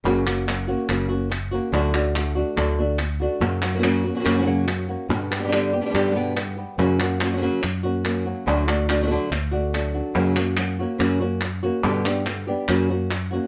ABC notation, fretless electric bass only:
X:1
M:4/4
L:1/8
Q:1/4=142
K:none
V:1 name="Fretless electric bass" clef=bass
^F,,,4 F,,,4 | D,,4 D,,4 | ^F,,4 F,,4 | G,,4 G,,4 |
^F,,4 F,,4 | D,,4 D,,4 | ^F,,4 F,,4 | G,,4 ^F,,4 |]